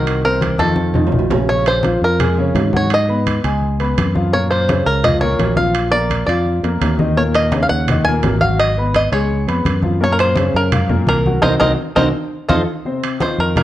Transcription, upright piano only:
0.00 0.19 D#3 medium
0.00 0.19 D#4 medium
0.00 0.19 F#4 medium
0.25 0.54 C3 medium
0.25 0.54 C4 medium
0.25 0.54 C5 medium
0.59 0.89 D#3 medium
0.59 0.89 D#4 medium
0.59 0.89 F4 medium
0.95 1.25 D#3 medium
0.95 1.25 D#4 medium
0.95 1.25 F4 medium
1.30 1.45 C#3 medium
1.30 1.46 C#4 medium
1.30 1.46 C#5 medium
1.49 1.78 C#3 medium
1.49 1.78 C#4 medium
1.49 1.78 C#5 medium
1.84 2.13 F3 medium
1.84 2.14 F4 medium
1.84 2.14 F5 medium
2.19 2.34 G#3 medium
2.19 2.34 G#4 medium
2.19 2.34 G#5 medium
2.38 2.67 C#3 medium
2.38 2.67 C#4 medium
2.38 2.68 C#5 medium
2.73 3.02 F#3 medium
2.73 3.02 F#4 medium
2.73 3.03 F#5 medium
3.08 3.38 B3 medium
3.08 3.38 B4 medium
3.08 3.38 B5 medium
3.44 3.73 G#3 medium
3.44 3.73 G#4 medium
3.44 3.73 G#5 medium
3.80 4.09 B3 medium
3.80 4.09 B4 medium
3.80 4.09 B5 medium
4.14 4.29 F3 medium
4.14 4.29 F4 medium
4.14 4.30 F5 medium
4.32 4.62 A#2 medium
4.32 4.62 A#3 medium
4.32 4.62 A#4 medium
4.68 4.97 C#3 medium
4.68 4.97 C#4 medium
4.68 4.98 C#5 medium
5.03 5.18 F3 medium
5.03 5.18 F4 medium
5.03 5.18 F5 medium
5.21 5.50 A#2 medium
5.21 5.50 A#3 medium
5.21 5.51 A#4 medium
5.57 5.86 F3 medium
5.57 5.86 F4 medium
5.57 5.86 F5 medium
5.92 6.21 A#3 medium
5.92 6.22 A#4 medium
5.92 6.22 A#5 medium
6.28 6.57 F3 medium
6.28 6.57 F4 medium
6.28 6.58 F5 medium
6.63 6.93 A#3 medium
6.63 6.93 A#4 medium
6.63 6.93 A#5 medium
6.98 7.13 D#3 medium
6.98 7.14 D#4 medium
6.98 7.14 D#5 medium
7.17 7.46 A#2 medium
7.17 7.46 A#3 medium
7.17 7.46 A#4 medium
7.53 7.82 C#3 medium
7.53 7.82 C#4 medium
7.53 7.82 C#5 medium
7.90 8.04 D#3 medium
7.90 8.04 D#4 medium
7.90 8.04 D#5 medium
8.07 8.36 A#2 medium
8.07 8.36 A#3 medium
8.07 8.36 A#4 medium
8.42 8.71 F#3 medium
8.42 8.71 F#4 medium
8.42 8.71 F#5 medium
8.77 9.06 B3 medium
8.77 9.07 B4 medium
8.77 9.07 B5 medium
9.12 9.41 G#3 medium
9.12 9.42 G#4 medium
9.12 9.42 G#5 medium
9.47 9.77 B3 medium
9.47 9.77 B4 medium
9.47 9.77 B5 medium
9.83 9.98 F3 medium
9.83 9.98 F4 medium
9.83 9.98 F5 medium
10.00 10.30 A#2 medium
10.00 10.30 A#3 medium
10.00 10.30 A#4 medium
10.36 10.66 C#3 medium
10.36 10.66 C#4 medium
10.36 10.66 C#5 medium
10.72 10.87 F3 medium
10.72 10.87 F4 medium
10.72 10.87 F5 medium
10.89 11.19 A#2 medium
10.89 11.19 A#3 medium
10.89 11.19 A#4 medium
11.26 11.41 F#3 medium
11.26 11.41 F#4 medium
11.26 11.41 F#5 medium
11.44 11.55 C4 medium
11.44 11.55 D#4 loud
11.44 11.55 F#4 medium
11.61 11.72 C4 loud
11.61 11.72 D#4 medium
11.61 11.72 F#4 medium
11.95 12.08 C4 loud
11.95 12.08 D#4 loud
11.95 12.07 F#4 loud
12.49 12.61 D#4 medium
12.49 12.61 F4 medium
12.49 12.61 A4 medium
12.85 13.15 C3 medium
12.85 13.15 C4 medium
12.85 13.15 C5 medium
13.20 13.50 D#3 medium
13.20 13.50 D#4 medium
13.20 13.50 F4 medium
13.55 13.63 D#3 medium
13.55 13.63 D#4 medium
13.55 13.63 F4 medium

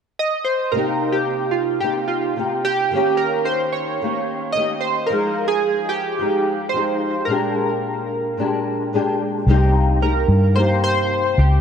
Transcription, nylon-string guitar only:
0.72 1.81 C3 medium
0.72 1.83 A#3 medium
0.76 1.83 D#4 medium
0.76 1.85 G4 medium
1.82 2.35 C3 soft
1.82 2.37 A#3 medium
1.82 2.38 D#4 medium
1.82 2.39 G4 soft
2.36 2.92 C3 medium
2.36 2.93 A#3 soft
2.36 2.95 D#4 medium
2.36 2.96 G4 medium
2.91 4.01 D#3 medium
2.91 4.02 A#3 medium
2.95 4.03 C#4 medium
2.95 4.04 G4 medium
4.02 4.55 D#3 medium
4.02 4.56 A#3 medium
4.02 4.56 C#4 medium
4.02 4.58 G4 soft
4.55 5.09 D#3 soft
4.55 5.11 A#3 soft
4.55 5.12 C#4 medium
4.55 5.13 G4 medium
5.10 6.18 F3 medium
5.10 6.20 G#3 medium
5.10 6.20 D#4 medium
6.19 6.73 F3 medium
6.19 6.74 G#3 medium
6.19 6.75 D#4 medium
6.19 6.77 G4 medium
6.74 7.35 F3 medium
6.74 7.29 G#3 soft
6.74 7.30 D#4 medium
6.74 7.32 G4 medium
7.27 8.36 A#2 medium
7.27 8.37 G#3 medium
7.27 8.38 D4 medium
7.32 8.40 G4 medium
8.37 8.92 A#2 medium
8.37 8.93 G#3 medium
8.37 8.93 D4 medium
8.37 8.95 G4 medium
8.93 9.47 A#2 medium
8.93 9.48 G#3 medium
8.93 9.48 D4 medium
8.93 9.49 G4 medium
9.48 9.99 C3 medium
9.48 10.01 A#3 medium
9.48 10.03 D#4 medium
9.48 10.04 G4 medium
10.00 10.53 C3 soft
10.00 10.56 A#3 soft
10.00 10.57 D#4 medium
10.00 10.59 G4 medium
10.54 11.61 C3 medium
10.54 11.61 A#3 medium
10.54 11.61 D#4 medium
10.59 11.61 G4 medium

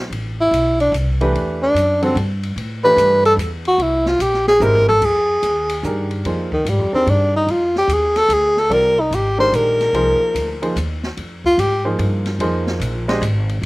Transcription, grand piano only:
1.21 1.73 E3 medium
1.21 1.73 A3 medium
1.21 1.73 D4 medium
1.21 1.73 G4 medium
1.21 1.73 B4 medium
2.02 2.15 D3 medium
2.02 2.15 G3 medium
2.02 2.15 C4 medium
2.02 2.15 F#4 medium
2.02 2.15 A4 medium
2.84 3.36 E3 medium
2.84 3.36 A3 medium
2.84 3.36 D4 medium
2.84 3.36 G4 medium
2.84 3.36 B4 medium
4.61 4.85 G#3 medium
4.61 4.85 C4 medium
4.61 4.85 E4 medium
4.61 4.85 G4 medium
4.61 4.85 A#4 medium
5.85 6.47 D#3 medium
5.85 6.47 D4 soft
5.85 6.47 G4 medium
5.85 6.25 G#4 medium
5.85 6.47 A#4 medium
6.26 6.50 F3 medium
6.26 6.49 A#3 medium
6.26 6.50 D#4 medium
6.26 6.50 G#4 medium
6.26 6.50 C5 medium
6.92 7.45 D#3 medium
6.92 7.45 D4 medium
6.92 7.45 G4 medium
6.92 7.45 G#4 medium
6.92 7.45 A#4 medium
8.70 8.95 G3 medium
8.70 8.95 C4 medium
8.70 8.95 F4 medium
8.70 8.95 A#4 medium
8.70 8.95 D5 medium
9.38 9.91 D#3 medium
9.38 9.91 G#3 medium
9.38 9.91 D4 medium
9.38 9.91 G4 medium
9.38 9.91 A#4 medium
9.94 10.57 F3 medium
9.94 10.56 A#3 medium
9.94 10.57 D#4 medium
9.94 10.57 G#4 medium
9.94 10.57 C5 medium
10.62 10.75 F3 medium
10.62 10.75 A#3 medium
10.62 10.75 D#4 medium
10.62 10.75 G#4 medium
10.62 10.75 C5 medium
11.85 12.37 F3 medium
11.85 12.37 A#3 medium
11.85 12.37 D#4 medium
11.85 12.37 G#4 medium
11.85 12.37 C5 medium
12.40 13.03 F3 medium
12.40 13.03 A#3 medium
12.40 13.03 D#4 medium
12.40 13.03 G#4 medium
12.40 13.03 C5 medium
13.08 13.21 G#3 medium
13.08 13.21 D4 medium
13.08 13.21 G4 medium
13.08 13.21 C5 medium
13.08 13.21 D#5 medium

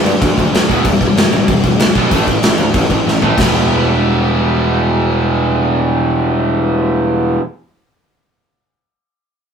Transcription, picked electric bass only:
0.04 0.15 G2 medium
0.22 0.32 D2 medium
0.38 0.47 D2 medium
0.53 0.63 D2 medium
0.69 0.79 E1 medium
0.85 0.95 E1 loud
1.01 1.11 E1 medium
1.16 1.26 G1 medium
1.32 1.42 A1 medium
1.48 1.58 E1 medium
1.64 1.74 E1 medium
1.80 1.89 D2 medium
1.95 2.05 B1 medium
2.12 2.21 A1 medium
2.27 2.37 A1 medium
2.44 2.54 A1 medium
2.59 2.69 D2 medium
2.74 2.84 A1 medium
2.90 3.00 A1 medium
3.06 3.16 A1 medium
3.22 3.31 A1 medium
3.37 7.36 E1 medium

